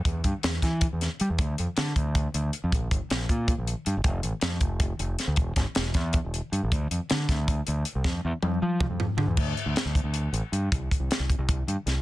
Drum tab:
CC |-------|-------|-------|-------|
HH |xxxxxxx|xxxxxxx|xxxxxxx|xxxxxxx|
SD |--oo-o-|--o----|--o----|--o---o|
T1 |-------|-------|-------|-------|
T2 |-------|-------|-------|-------|
FT |-------|-------|-------|-------|
BD |oo-oo--|o--oo--|oo-oo--|o--oo--|

CC |-------|-------|-------|x------|
HH |xxxxxxx|xxxxxxx|-------|-xxxxxx|
SD |-ooo---|--oo---|o------|--o----|
T1 |-------|-------|--o----|-------|
T2 |-------|-------|----o--|-------|
FT |-------|-------|-----oo|-------|
BD |oo-oo--|o--oo--|o---o--|o--o---|

CC |-------|
HH |xxxxxxx|
SD |--o---o|
T1 |-------|
T2 |-------|
FT |-------|
BD |oo-oo--|